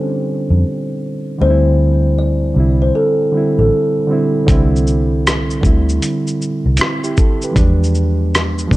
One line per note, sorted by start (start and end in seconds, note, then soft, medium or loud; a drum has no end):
0.00 1.38 D3 medium
0.00 1.40 G3 medium
0.00 1.42 C4 medium
0.00 1.43 C#4 medium
0.00 0.62 D4 medium
0.00 1.43 E4 medium
0.50 0.62 F2 medium
1.38 2.52 D2 loud
1.38 2.20 D3 medium
1.38 2.21 G3 medium
1.38 2.22 C4 medium
1.38 2.18 C5 loud
1.44 1.51 D#4 medium
1.50 2.26 E4 medium
2.19 2.78 D5 medium
2.54 2.90 C2 medium
2.54 3.12 D3 medium
2.54 3.13 G3 medium
2.54 3.14 C4 medium
2.59 3.15 E4 medium
2.82 2.94 C5 medium
2.95 3.54 A4 medium
3.32 3.90 D3 medium
3.32 3.91 G3 medium
3.32 3.92 C4 medium
3.37 3.92 E4 medium
3.58 3.70 A1 medium
3.58 3.93 A4 medium
4.07 4.39 D3 medium
4.07 4.39 G3 medium
4.07 4.40 C4 medium
4.13 4.41 E4 medium
4.46 5.60 C2 medium
4.46 5.28 D3 medium
4.46 5.29 G3 medium
4.46 5.30 C4 medium
4.46 kick medium
4.46 closed hi-hat medium
4.46 shaker medium
4.52 5.31 E4 medium
4.76 shaker soft
4.87 shaker soft
5.27 cross-stick loud
5.27 closed hi-hat medium
5.27 shaker medium
5.50 shaker soft
5.61 5.97 D2 medium
5.61 6.71 D3 medium
5.61 6.72 G3 medium
5.61 6.41 C4 medium
5.61 kick medium
5.61 shaker soft
5.67 6.42 E4 medium
5.89 shaker soft
6.02 closed hi-hat medium
6.02 shaker medium
6.27 shaker soft
6.42 shaker soft
6.66 6.78 C2 medium
6.77 7.03 C4 medium
6.77 7.03 E4 medium
6.77 closed hi-hat medium
6.77 shaker medium
6.81 cross-stick loud
7.04 7.17 E4 medium
7.04 7.17 G4 medium
7.04 shaker medium
7.17 7.41 A4 medium
7.17 kick medium
7.17 shaker soft
7.42 7.80 G4 soft
7.42 7.80 B4 soft
7.42 shaker soft
7.51 8.34 F3 medium
7.51 8.35 G#3 medium
7.51 8.36 B3 medium
7.56 8.67 E2 medium
7.56 8.37 D4 medium
7.56 kick loud
7.56 closed hi-hat medium
7.56 shaker medium
7.84 shaker soft
7.95 shaker soft
8.35 cross-stick loud
8.35 closed hi-hat medium
8.35 shaker medium
8.58 shaker soft
8.68 8.77 D2 medium
8.68 8.77 F3 medium
8.68 8.77 G#3 medium
8.68 8.77 B3 medium
8.68 kick medium
8.72 8.77 D4 medium
8.72 shaker soft